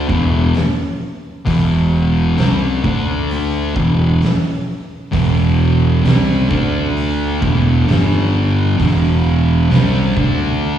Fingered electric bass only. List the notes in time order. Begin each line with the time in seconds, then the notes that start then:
0.09 E1
1.47 E1
2.39 C2
2.84 D2
3.75 E1
5.14 E1
6.04 C2
6.51 D2
7.42 E1
7.88 G1
8.80 E1
9.70 C2
10.17 D2